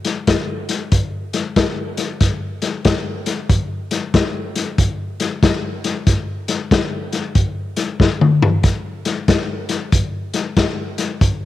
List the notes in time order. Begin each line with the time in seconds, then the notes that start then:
0.05 snare, closed hi-hat
0.27 kick, snare, closed hi-hat
0.69 snare, closed hi-hat
0.92 kick, closed hi-hat
1.33 snare, closed hi-hat
1.56 kick, snare, closed hi-hat
1.97 snare, closed hi-hat
2.21 kick, snare, closed hi-hat
2.62 snare, closed hi-hat
2.85 kick, snare, closed hi-hat
3.26 snare, closed hi-hat
3.49 kick, closed hi-hat
3.91 snare, closed hi-hat
4.14 kick, snare, closed hi-hat
4.55 snare, closed hi-hat
4.78 kick, closed hi-hat
5.20 snare, closed hi-hat
5.43 kick, snare, closed hi-hat
5.84 snare, closed hi-hat
6.07 kick, snare, closed hi-hat
6.48 snare, closed hi-hat
6.71 kick, snare, closed hi-hat
7.12 snare, closed hi-hat
7.35 kick, closed hi-hat
7.76 snare, closed hi-hat
8.00 kick, snare
8.21 mid tom
8.42 floor tom
8.63 kick, snare, closed hi-hat
9.05 snare, closed hi-hat
9.28 kick, snare, closed hi-hat
9.69 snare, closed hi-hat
9.92 kick, closed hi-hat
10.34 snare, closed hi-hat
10.57 kick, snare, closed hi-hat
10.98 snare, closed hi-hat
11.21 kick, closed hi-hat